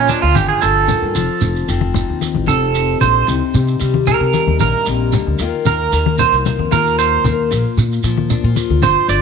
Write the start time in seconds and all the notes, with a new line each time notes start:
Already playing: A#2 F3 A#3 F4
0.08 D4, high conga, shekere
0.22 D2 F4
0.35 G1 D4 G4, high conga, shekere
0.48 G#4
0.61 G1 D3 A4, shekere
0.88 D#3, low conga, shekere
1.02 G2
1.15 F1 F3, shekere
1.41 F1, shekere
1.56 shekere
1.68 F1 C4, shekere
1.81 high conga
1.94 D#4, low conga, shekere
2.09 D#2
2.21 high conga, shekere
2.34 A1, high conga
2.46 F1 C3 D#4 A4, high conga, shekere
2.75 shekere
3.01 A#1 A4 C5, low conga, shekere
3.27 C2 C3, shekere
3.54 C3, shekere
3.68 shekere
3.79 C3 G3, shekere
3.94 high conga
4.07 D#4 A#4, low conga, shekere
4.21 C3
4.33 high conga, shekere
4.47 D#2, high conga
4.60 A#1 G2 A#3 A#4, high conga, shekere
4.86 A#1 C3, shekere
5.12 D3, low conga, shekere
5.27 D2
5.39 D#2 D#3 A#3 F4 A#4, shekere
5.65 D#2 A#4, high conga, shekere
5.92 D#2 A#3, shekere
6.06 high conga
6.18 A#4 C5, low conga, shekere
6.32 C2, shekere
6.46 high conga, low conga, shekere
6.59 F2, high conga
6.72 D#2 A#2 F4 A#4, high conga, shekere
6.87 shekere
6.99 C5, shekere
7.24 D#2 A#4, low conga, shekere
7.51 A#1 A#2, shekere
7.78 A#2, shekere
7.92 shekere
8.04 A#2 F3, shekere
8.17 high conga
8.30 D4, low conga, shekere
8.44 A#2 F4
8.56 high conga, shekere
8.70 D2, high conga
8.82 G1 A#2 D4 C5, high conga, shekere
9.08 G1 D5, shekere